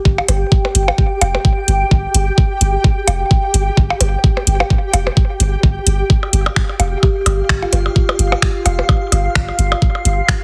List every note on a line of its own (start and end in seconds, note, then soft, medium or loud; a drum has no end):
0.00 10.44 G4 medium
0.00 5.78 G5 medium
0.05 0.21 G1 medium
0.05 kick loud
0.18 percussion blips medium
0.28 0.44 G1 loud
0.28 closed hi-hat medium
0.28 percussion blips medium
0.52 kick loud
0.65 percussion blips medium
0.75 0.90 G1 loud
0.75 closed hi-hat loud
0.88 percussion blips medium
0.98 kick loud
1.21 1.37 F1 loud
1.21 closed hi-hat medium
1.21 percussion blips medium
1.35 percussion blips medium
1.45 kick loud
1.68 1.84 G1 medium
1.68 closed hi-hat medium
1.91 2.07 G1 medium
1.91 kick loud
2.14 2.30 G1 loud
2.14 closed hi-hat medium
2.38 kick loud
2.61 2.77 G1 loud
2.61 closed hi-hat loud
2.84 kick loud
3.08 3.23 F1 loud
3.08 closed hi-hat medium
3.08 percussion blips medium
3.31 kick loud
3.54 3.70 G1 medium
3.54 closed hi-hat loud
3.77 3.93 G1 medium
3.77 kick loud
3.90 percussion blips medium
4.01 4.16 G1 loud
4.01 closed hi-hat loud
4.01 percussion blips medium
4.24 kick loud
4.37 percussion blips medium
4.47 4.63 G1 loud
4.47 closed hi-hat loud
4.60 percussion blips medium
4.70 kick loud
4.93 5.09 F1 medium
4.93 closed hi-hat medium
4.93 percussion blips medium
5.07 percussion blips medium
5.17 kick loud
5.40 5.56 G1 medium
5.40 closed hi-hat medium
5.63 5.79 G1 medium
5.63 10.44 F5 medium
5.63 kick loud
5.87 6.02 G1 loud
5.87 closed hi-hat medium
6.10 kick loud
6.23 percussion blips soft
6.33 6.49 G1 loud
6.33 closed hi-hat medium
6.46 percussion blips medium
6.56 finger snap medium
6.56 kick loud
6.69 percussion blips soft
6.80 6.95 F1 loud
6.80 closed hi-hat medium
6.80 percussion blips medium
7.03 7.39 G4 medium
7.03 kick loud
7.03 percussion blips soft
7.26 7.42 G1 medium
7.26 closed hi-hat medium
7.26 percussion blips medium
7.49 7.65 G1 medium
7.49 finger snap medium
7.49 kick loud
7.49 percussion blips soft
7.62 7.69 F4 medium
7.62 percussion blips medium
7.73 7.88 G1 loud
7.73 7.81 F4 medium
7.73 closed hi-hat medium
7.73 percussion blips medium
7.86 percussion blips soft
7.96 kick loud
8.09 percussion blips medium
8.19 8.35 G1 loud
8.19 closed hi-hat medium
8.32 percussion blips medium
8.32 percussion blips soft
8.42 finger snap medium
8.42 kick loud
8.66 8.81 F1 loud
8.66 closed hi-hat medium
8.66 percussion blips medium
8.66 percussion blips soft
8.79 percussion blips medium
8.89 kick loud
8.89 percussion blips medium
9.12 9.28 G1 medium
9.12 closed hi-hat medium
9.12 percussion blips soft
9.35 9.51 G1 medium
9.35 finger snap medium
9.35 kick loud
9.49 percussion blips soft
9.59 9.74 G1 loud
9.59 closed hi-hat medium
9.72 percussion blips medium
9.82 kick loud
9.95 percussion blips soft
10.05 10.21 G1 loud
10.05 closed hi-hat medium
10.28 finger snap medium
10.28 kick loud
10.28 percussion blips soft